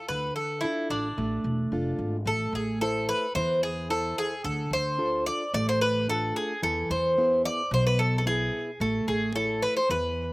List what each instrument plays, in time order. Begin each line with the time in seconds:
0.08 upright bass D2, steel-string acoustic guitar D3, bouzouki B4
0.36 bouzouki A4
0.61 steel-string acoustic guitar D4 F4, bouzouki E4
0.65 steel-string acoustic guitar A4
0.90 upright bass A1, bouzouki D4
1.18 upright bass A1, steel-string acoustic guitar A3
1.44 upright bass E1
1.72 upright bass F1, steel-string acoustic guitar D4 F4 A4
1.99 upright bass G#1
2.25 upright bass A1, steel-string acoustic guitar A3, bouzouki A4
2.53 upright bass A1, bouzouki G#4
2.81 steel-string acoustic guitar E4 A4 C5, bouzouki A4
3.09 bouzouki B4
3.35 upright bass E2, steel-string acoustic guitar E3, bouzouki C5
3.63 bouzouki G#4
3.90 steel-string acoustic guitar E4 A4 C5, bouzouki A4
4.18 bouzouki G#4
4.44 upright bass D2, steel-string acoustic guitar D3, bouzouki A4
4.71 upright bass D2, bouzouki C5
4.98 steel-string acoustic guitar D4 F4 A4
5.26 bouzouki D5
5.54 upright bass A1, steel-string acoustic guitar A3, bouzouki D5
5.69 bouzouki C5
5.81 bouzouki B4
6.08 steel-string acoustic guitar D4 F4 A4, bouzouki A4
6.36 bouzouki G#4
6.63 upright bass E2, steel-string acoustic guitar E3, bouzouki A4
6.90 upright bass E2, bouzouki C5
7.18 steel-string acoustic guitar B3 E4 G#4
7.45 bouzouki D5
7.71 upright bass B1, steel-string acoustic guitar B2, bouzouki C5
7.87 bouzouki B4
7.99 bouzouki A4
8.18 bouzouki A4
8.26 steel-string acoustic guitar B3 E4 G#4, bouzouki G#4
8.80 upright bass A1, steel-string acoustic guitar A3, bouzouki A4
9.07 upright bass A1, bouzouki G#4
9.35 steel-string acoustic guitar E4 A4 C#5, bouzouki A4
9.62 bouzouki B4
9.77 bouzouki C5
9.89 upright bass E2, steel-string acoustic guitar E3, bouzouki B4